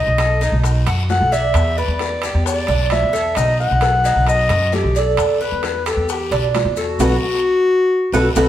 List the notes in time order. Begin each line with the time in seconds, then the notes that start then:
Already playing: D#4
0.00 D#5
0.07 B1
0.18 A4, high bongo, high timbale, short guiro, maracas
0.41 D#4, high bongo, short guiro, maracas
0.52 B1
0.64 high bongo, high timbale, long guiro, maracas
0.87 F#2 F#4, high bongo, high timbale, maracas
1.09 A4 F#5, high bongo, low bongo, short guiro, maracas
1.21 B1
1.32 D5 E5, short guiro, maracas
1.54 E2, high bongo, high timbale, long guiro, maracas
1.77 B4 D5, high bongo, maracas
1.88 E2
1.99 high bongo, high timbale, short guiro, maracas
2.22 G4, high bongo, high timbale, short guiro, maracas
2.34 E2
2.46 D5, high bongo, long guiro, maracas
2.67 B1 D4, high bongo, high timbale, maracas
2.90 E5, high bongo, low bongo, high timbale, short guiro, maracas
3.03 E2
3.13 A4, short guiro, maracas
3.35 B1 D#4 D#5, high bongo, high timbale, long guiro, maracas
3.60 F#5, high bongo, maracas
3.71 B1
3.81 A4, high bongo, high timbale, short guiro, maracas
4.04 D#4, high bongo, short guiro, maracas
4.16 B1
4.27 D#5, high bongo, high timbale, long guiro, maracas
4.49 F#2 F#4, high bongo, high timbale, maracas
4.72 G4 A4, high bongo, low bongo, short guiro, maracas
4.84 B1
4.95 A4 D5, short guiro, maracas
5.17 E2, high bongo, high timbale, long guiro, maracas
5.41 B4, high bongo, maracas
5.52 E2
5.63 high bongo, high timbale, short guiro, maracas
5.86 G4 A4, high bongo, high timbale, short guiro, maracas
5.97 E2
6.09 G4, high bongo, long guiro, maracas
6.31 B1 D4, high bongo, high timbale, maracas
6.54 high bongo, low bongo, high timbale, low timbale, short guiro, maracas
6.65 E2
6.76 F#4 A4, short guiro, maracas
6.99 B1 F#4 A4 B4, low bongo, high timbale, long guiro, maracas
8.12 B1 F#4 A4 B4, low bongo, high timbale, long guiro, maracas
8.36 B1 F#4 A4 B4, low bongo, high timbale, long guiro, maracas